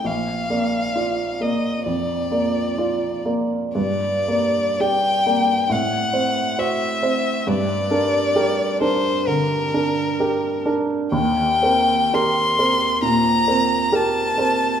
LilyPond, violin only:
\new Staff \with { instrumentName = "Violin" } { \time 4/4 \key g \minor \tempo 4 = 66 f''4. ees''8 d''4. r8 | d''4 g''4 fis''4 e''4 | d''4. c''8 bes'4. r8 | g''4 c'''4 bes''4 a''4 | }